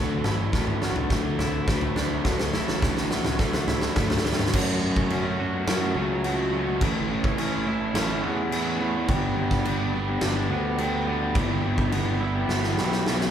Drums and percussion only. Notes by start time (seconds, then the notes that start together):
0.24 snare, mid tom
0.53 kick, snare, floor tom
0.67 mid tom
0.82 snare
0.96 floor tom
1.10 kick, snare
1.39 snare, floor tom
1.68 kick, snare
1.81 floor tom
1.96 snare
2.25 kick, snare, floor tom
2.39 snare
2.53 snare
2.68 snare
2.82 kick, snare, floor tom
2.97 snare
3.11 snare
3.25 snare, floor tom
3.39 kick, snare
3.53 snare
3.68 snare, floor tom
3.81 snare
3.96 kick, snare, mid tom
4.10 snare, floor tom
4.18 snare
4.25 snare
4.32 snare
4.39 snare, mid tom
4.46 snare
4.53 kick, crash
4.96 kick
5.10 crash
5.68 snare, crash
6.24 crash
6.81 kick, crash
7.24 kick
7.38 crash
7.95 snare, crash
8.52 crash
9.08 kick, crash
9.51 kick, snare
9.65 crash
10.21 snare, crash
10.78 crash
11.35 kick, crash
11.78 kick
11.92 crash
12.49 snare
12.63 snare
12.77 snare
12.92 snare
13.06 snare
13.21 snare